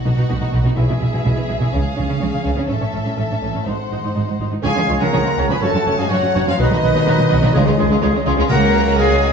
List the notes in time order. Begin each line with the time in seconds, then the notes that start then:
Already playing: F#4 F#5
0.04 B1 B2 D#4
0.17 B2 D#4
0.29 B1 B2 D#4
0.40 B2 D#4
0.52 B1 B2 D#4
0.64 B2 D#4
0.77 B1 B2 E4 G#4 E5
0.89 B2 E4
1.01 B1 B2 E4
1.13 B2 E4
1.25 B1 B2 E4
1.36 B2 E4
1.49 B1 B2 E4
1.60 B2 E4
1.72 C#2 C#3 C#4 F5
1.96 C#2 C#3 C#4
2.08 C#3 C#4
2.20 C#2 C#3 C#4
2.31 C#3 C#4
2.43 C#2 C#3 C#4
2.56 C#3 C#4
2.68 A1 A2 C#4 A4 E5
2.81 A2 C#4
2.93 A1 A2 C#4
3.05 A2 C#4
3.18 A1 A2 C#4
3.31 A2 C#4
3.42 A1 A2 C#4
3.54 A2 C#4
3.66 G#1 G#2 D#4 C5 F#5
3.91 G#1 G#2 D#4
4.03 G#2 D#4
4.15 G#1 G#2 D#4
4.27 G#2 D#4
4.40 G#1 G#2 D#4
4.52 G#2 D#4
4.63 C#2 C#3 F3 C#4 F4 G#4 C#5 F5 G#5
4.67 G#3
4.76 C#3 F3 C#4 G#4
4.87 C#2 C#3 F3 G#3 C#4 F4 C#5
4.99 C#3 F3 A#3 C#4 G#4 A#4 F#5 A#5
5.12 C#2 C#3 F3 C#4 F4 G#4 C#5
5.23 C#3 F3 G#3 C#4 F4
5.37 C#2 C#3 F3 C#4 F4 G#4 C#5
5.49 C#3 F3 B3 C#4 G#4 B4 G#5 B5
5.60 F#1 F#2 F#3 C#4 F#4 A4 C#5 F#5 A5
5.64 A3
5.73 F#2 F#3 C#4 F#4
5.86 F#1 F#2 F#3 A3 C#4 F#4 C#5
5.97 F#2 F#3 G#3 C#4 F#4 G#4 F5 G#5
6.09 F#1 F#2 F#3 C#4 F#4 C#5 F#5
6.22 F#2 F#3 A3 C#4
6.33 F#1 F#2 F#3 C#4 F#4 C#5
6.46 F#2 F3 F#3 C#4 F4 F#4 C#5 F5
6.58 B1 B2 D#3 F#3 B3 D#4 F#4 B4 D#5
6.70 B2 F#3 B3 D#4 F#4
6.82 B1 B2 F#3 B3 D#4 F#4 B4
6.94 B2 F#3 B3 D#4 F#4
7.05 B1 B2 F#3 B3 D#4 F#4 B4
7.17 B2 F#3 B3
7.22 B3 D#4
7.29 B1 B2 F#3 B3 D#4 F#4 B4
7.41 B2 F#3 B3 D#4 F#4
7.52 C#2 C#3 G#3 C#4 F4 G#4
7.66 C#2 C#3 G#3 C#4 F4
7.78 C#2 C#3 G#3 C#4 F4 G#4
7.90 C#2 C#3 G#3 C#4 F4
8.01 C#2 C#3 G#3 C#4 F4 G#4
8.14 C#2 C#3 G#3 C#4
8.26 C#2 C#3 G#3 C#4 F4 G#4
8.37 C#2 C#3 G#3 C#4 F4
8.49 C#2 C#3 F#3 A#3 C#4 F#4 A#4 F#5 A#5
8.74 F#4 A#4
8.97 G#3 F#4 G#4 A#4 F5 G#5
9.21 F#4 A#4